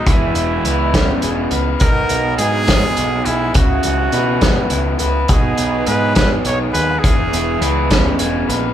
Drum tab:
HH |xxxxxx|xxxxxx|xxxxxx|xxxxxx|
SD |---o--|---o--|---o--|---o--|
BD |o--o--|o--o--|o--o--|o--o--|

HH |xxxxxx|
SD |---o--|
BD |o--o--|